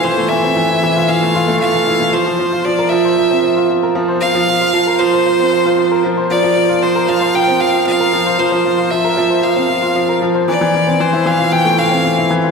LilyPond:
<<
  \new Staff \with { instrumentName = "Violin" } { \time 4/4 \key bes \lydian \tempo 4 = 115 c''8 e''4. f''4 f''4 | c''4 d''8 e''4. r4 | f''4. c''2 r8 | d''4 c''8 f''8 g''8 f''8 f''4 |
c''4 e''4 f''4. r8 | d''4 c''8 f''8 g''8 f''4 r8 | }
  \new Staff \with { instrumentName = "Grand piano" } { \clef bass \time 4/4 \key bes \lydian e16 a16 e16 c'16 e16 e'16 e16 f'16 e16 a16 f'16 a16 e16 e16 e'16 a16 | f16 f16 f16 f'16 f16 bes'16 f16 c''16 f16 c'16 f16 f'16 f16 bes'16 f16 c''16 | f16 f16 f16 f'16 f16 bes'16 f16 c''16 f16 c'16 f16 f'16 f16 bes'16 f16 c''16 | f16 f16 f16 f'16 f16 bes'16 f16 c''16 f16 c'16 f16 f'16 f16 bes'16 f16 c''16 |
f16 f16 f16 f'16 f16 bes'16 f16 c''16 f16 c'16 f16 f'16 f16 bes'16 f16 c''16 | e16 e16 e16 c'16 e16 e'16 e16 f'16 e16 a16 e16 c'16 e16 e'16 e16 f'16 | }
>>